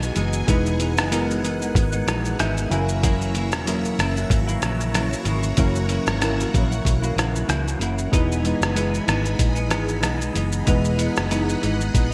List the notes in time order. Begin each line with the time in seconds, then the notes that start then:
Already playing: G#3 B3 D#4 E4 F#4 G#4 D#5 G#5
0.00 B3 D#4, shaker
0.04 G#3
0.15 F#1 E3 G#3 B3 D#4, closed hi-hat, shaker
0.33 shaker
0.47 E1 E3 G#3 B3 D#4 E4 B4 F#5, kick, closed hi-hat, shaker
0.66 shaker
0.78 E3 G#3 B3 D#4, closed hi-hat, shaker
0.97 F#1, cross-stick, shaker
1.10 E3 G#3 B3 D#4 E4 A#4, closed hi-hat, shaker
1.31 shaker
1.42 E3 G#3 B3, closed hi-hat, shaker
1.46 D#4
1.60 G#3 B3 D#4, shaker
1.75 G#1, kick, closed hi-hat, shaker
1.92 G#3 B3 D#4, shaker
2.07 A#1 E3 G#3 B3 D#4, cross-stick, closed hi-hat, shaker
2.25 shaker
2.38 G#1 E3 G#3 B3 D#4 E5, cross-stick, closed hi-hat, shaker
2.56 G#3 B3 D#4, shaker
2.69 F#1 C#3 E3 F#3 A#3 C#4 E4 F#4 A#4 C#5 E5 G#5 A#5, closed hi-hat, shaker
2.74 E4
2.89 shaker
3.02 F#2 C#3 E3 A#3 E4, kick, closed hi-hat, shaker
3.21 shaker
3.34 C#3 E3 A#3, closed hi-hat, shaker
3.38 E4
3.52 E1, cross-stick, shaker
3.65 F#2 C#3 E3 F#3 A#3 C#4 E4 A#4, closed hi-hat, shaker
3.69 E4
3.85 shaker
3.99 F#1 C#3 E3 A#3 E4, cross-stick, closed hi-hat, shaker
4.16 A#3 E4, shaker
4.20 E3
4.30 G#1, kick, closed hi-hat, shaker
4.47 E3 A#3 E4, shaker
4.62 A#1 C#3 E3 A#3, cross-stick, closed hi-hat, shaker
4.66 E4
4.80 shaker
4.93 F#2 C#3 E3 A#3 E4, cross-stick, closed hi-hat, shaker
5.11 A#3 E4, shaker
5.15 E3
5.24 G#1 C#3 E3 A#3 F#5, closed hi-hat, shaker
5.29 E4
5.43 shaker
5.57 F#1 F#2 C#3 E3 F#3 A#3 C#4 E4 A#4, kick, closed hi-hat, shaker
5.75 shaker
5.88 C#3 E3 A#3, closed hi-hat, shaker
5.92 E4
6.07 G#1, cross-stick, shaker
6.20 F#2 C#3 E3 F#3 A#3 C#4 E4 A#4, cross-stick, closed hi-hat, shaker
6.40 shaker
6.52 A#1 C#3 E3 A#3 E4, kick, closed hi-hat, shaker
6.71 E3 A#3 E4, shaker
6.85 B1, kick, closed hi-hat, shaker
7.02 E3 A#3 E4, shaker
7.15 A#1 C#3 E3 A#3 E4, cross-stick, closed hi-hat, shaker
7.36 shaker
7.47 C#2 F#2 C#3 E3 A#3 E4, cross-stick, closed hi-hat, shaker
7.65 A#3 E4, shaker
7.69 E3
7.79 F#1 C#3 E3 A#3 E4, closed hi-hat, shaker
7.98 shaker
8.11 E1 E3 G#3 B3 D#4 E4 G#4 B4 D#5 G#5 B5, kick, closed hi-hat, shaker
8.32 shaker
8.43 E3 G#3 B3, closed hi-hat, shaker
8.47 D#4
8.61 F#1, cross-stick, shaker
8.75 E3 G#3 B3 D#4 E4 B4, closed hi-hat, shaker
8.94 shaker
9.06 G#1 E3 G#3 B3 D#4, cross-stick, closed hi-hat, shaker
9.24 G#3 B3 D#4, shaker
9.39 A#1, kick, closed hi-hat, shaker
9.55 B3 D#4, shaker
9.60 G#3
9.68 G#1 E3 G#3 B3, cross-stick, closed hi-hat, shaker
9.73 D#4
9.88 shaker
10.01 B1 E3 G#3 B3 D#4, cross-stick, closed hi-hat, shaker
10.19 G#3 B3 D#4, shaker
10.33 F#1 E3 G#3 B3, closed hi-hat, shaker
10.37 D#4
10.52 shaker
10.66 E1 E3 G#3 B3 D#4 E4 B4 F#5, kick, closed hi-hat, shaker
10.85 shaker
10.97 E3 G#3 B3 D#4, closed hi-hat, shaker
11.16 F#1, cross-stick, shaker
11.29 E3 G#3 B3 D#4 E4 B4, closed hi-hat, shaker
11.49 shaker
11.62 G#1 E3 G#3 B3 D#4, closed hi-hat, shaker
11.79 G#3 B3 D#4, shaker
11.94 A#1, kick, closed hi-hat, shaker
12.11 D#4